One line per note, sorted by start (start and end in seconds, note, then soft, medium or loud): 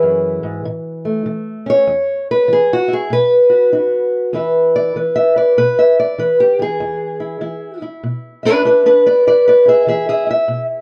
0.00 0.43 F#2 medium
0.00 1.25 E3 medium
0.00 0.63 E4 medium
0.00 0.63 G#4 medium
0.00 0.64 B4 medium
0.43 0.65 G#2 medium
0.65 1.22 A2 medium
1.05 1.89 A3 soft
1.26 1.83 E3 medium
1.66 1.88 C#4 soft
1.66 2.30 C#5 loud
1.87 2.45 E2 medium
2.31 2.51 B4 loud
2.48 3.06 E3 medium
2.53 2.72 G#4 loud
2.73 2.92 F#4 medium
2.88 3.08 E4 soft
2.93 3.13 G#4 medium
3.10 3.68 B2 medium
3.10 4.34 B4 loud
3.50 3.72 F#4 medium
3.72 4.30 D#4 medium
3.72 4.32 F#4 soft
4.33 4.91 E2 medium
4.33 4.95 E3 soft
4.33 6.40 E4 medium
4.33 4.96 B4 medium
4.33 4.75 E5 soft
4.76 4.96 D5 medium
4.96 5.53 E3 medium
4.96 5.36 B4 medium
5.16 5.36 E5 medium
5.36 5.58 B4 soft
5.36 5.58 D5 medium
5.58 6.14 B2 medium
5.58 5.78 B4 medium
5.79 5.99 E5 medium
5.99 6.19 D5 medium
6.18 6.58 E3 medium
6.18 6.40 B4 medium
6.40 6.60 G4 medium
6.59 7.40 E3 soft
6.59 7.84 G#4 medium
6.80 7.37 E2 medium
7.20 7.41 E4 soft
7.41 7.98 E3 medium
7.41 7.82 E4 medium
7.82 9.31 E4 soft
8.03 8.60 B2 medium
8.43 8.64 D4 medium
8.43 8.66 B4 loud
8.43 9.06 E5 soft
8.65 8.85 D4 medium
8.65 8.85 B4 medium
8.86 9.06 D4 medium
8.86 9.05 B4 medium
9.06 9.26 B4 medium
9.06 9.27 D5 medium
9.27 9.83 E2 medium
9.27 9.46 B4 medium
9.27 9.47 D5 loud
9.48 9.67 B4 medium
9.48 9.68 D5 medium
9.65 10.26 E4 soft
9.65 9.87 G#4 medium
9.65 9.88 E5 medium
9.87 10.44 E3 medium
9.87 10.08 G#4 medium
9.87 10.08 E5 medium
10.09 10.29 G#4 medium
10.09 10.29 E5 medium
10.27 10.81 E4 soft
10.27 10.63 E5 loud
10.48 10.81 B2 medium